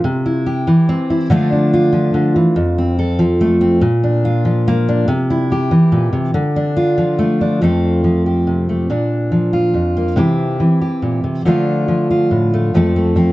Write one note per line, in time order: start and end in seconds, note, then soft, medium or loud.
0.04 0.67 C3 medium
0.26 1.09 E4 medium
0.46 1.27 G4 medium
0.67 1.27 E3 medium
0.89 1.28 C4 medium
1.10 1.28 E4 medium
1.30 2.13 D3 medium
1.30 1.92 F3 medium
1.30 2.54 A3 medium
1.30 1.51 D4 medium
1.30 1.73 F4 medium
1.52 2.54 D4 medium
1.73 2.98 F4 medium
1.93 2.35 F3 medium
2.14 2.35 D3 medium
2.36 2.56 E3 medium
2.56 3.82 F2 medium
2.78 3.60 C4 medium
2.99 3.80 A4 medium
3.19 3.79 F3 medium
3.41 3.80 A3 medium
3.61 3.82 C4 medium
3.81 5.07 A#2 medium
4.03 4.87 D4 medium
4.25 5.09 F4 medium
4.45 5.06 F3 medium
4.68 5.07 A#3 medium
4.89 5.06 D4 medium
5.08 5.71 C3 medium
5.30 6.33 E4 medium
5.52 6.33 G4 medium
5.71 6.32 E3 medium
5.92 6.12 A#2 medium
6.13 6.34 C3 medium
6.34 7.59 D3 medium
6.56 7.40 D4 medium
6.77 7.63 F4 medium
6.98 7.59 F3 medium
7.19 7.59 A3 medium
7.41 7.60 D4 medium
7.61 8.89 F2 medium
7.61 8.04 F3 soft
7.61 8.68 A3 soft
7.61 8.90 C4 soft
7.61 8.26 A4 medium
8.04 8.87 F3 soft
8.26 8.87 G4 soft
8.47 8.87 C3 soft
8.69 8.87 A3 soft
8.90 9.75 A#2 medium
8.90 10.15 D4 soft
9.32 10.15 F3 medium
9.53 10.17 F4 soft
9.74 10.17 F2 soft
9.97 10.15 A#3 soft
10.16 10.59 C3 medium
10.16 10.59 E3 medium
10.16 11.43 C4 medium
10.16 11.43 E4 medium
10.16 10.80 G4 medium
10.60 11.43 E3 medium
10.81 11.43 G4 medium
11.02 11.23 A#2 medium
11.24 11.45 C3 medium
11.45 12.70 D3 medium
11.45 11.87 F3 soft
11.45 12.52 A3 medium
11.45 12.71 D4 medium
11.45 12.09 F4 medium
11.88 12.70 F3 medium
12.11 12.76 F4 soft
12.31 12.71 A2 soft
12.54 12.71 A3 soft
12.74 13.32 F2 medium
12.74 13.15 F3 medium
12.74 12.95 A3 medium
12.74 13.15 C4 soft
12.74 13.32 A4 medium
12.96 13.32 A3 soft
13.16 13.32 F3 medium
13.16 13.32 C4 medium